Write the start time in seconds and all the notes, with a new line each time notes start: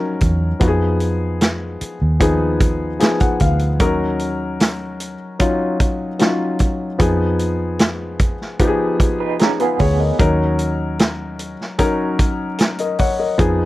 Already playing: F3 F#3 C#4 D#4 A#4
0.21 E2, kick, closed hi-hat
0.60 F2 F3 B3 D#4 F#4, kick, closed hi-hat
0.68 G#4
1.00 closed hi-hat
1.41 snare, closed hi-hat
1.81 muted fingered electric bass stroke, closed hi-hat
2.02 D#2
2.20 F3 B3 D#4 G#4, kick, closed hi-hat
2.60 kick, closed hi-hat
2.99 F3 B3 D#4 G#4 G#5, snare, closed hi-hat
3.20 F#5, kick, closed hi-hat
3.40 D2 F5, kick, closed hi-hat
3.59 closed hi-hat
3.80 D#2 F#3 C#4 D#4 A#4, kick, closed hi-hat
4.19 closed hi-hat
4.60 snare, closed hi-hat
5.00 closed hi-hat
5.39 F#3 C#4 D#4 F4, kick, closed hi-hat
5.80 kick, closed hi-hat
6.19 F#3 C#4 D#4 F4, snare, closed hi-hat
6.59 kick, closed hi-hat
6.99 F2 F3 B3 D#4 G#4, kick, closed hi-hat
7.39 closed hi-hat
7.79 snare, closed hi-hat
8.19 kick, closed hi-hat
8.41 snare
8.59 F3 B3 D#4 G4, kick, closed hi-hat
8.67 G#4
9.00 kick, closed hi-hat
9.20 D#4 B4
9.39 C#4 D#4 G#4 A#4, snare, closed hi-hat
9.60 B3 F4 G#4 B4, closed hi-hat
9.79 D2 G#4 C#5, kick, open hi-hat
10.00 A#4 D#5
10.19 D#2 F#3 C#4 D#4 A#4, kick, closed hi-hat
10.59 closed hi-hat
10.99 snare, closed hi-hat
11.39 closed hi-hat
11.61 snare
11.78 F#3 C#4 D#4 A#4, kick, closed hi-hat
12.19 kick, closed hi-hat
12.59 snare, closed hi-hat
12.78 A#4 D#5, closed hi-hat
12.99 C#5 F#5, kick, open hi-hat
13.19 A#4 D#5
13.38 F2 F3 B3 D#4 G#4, kick, closed hi-hat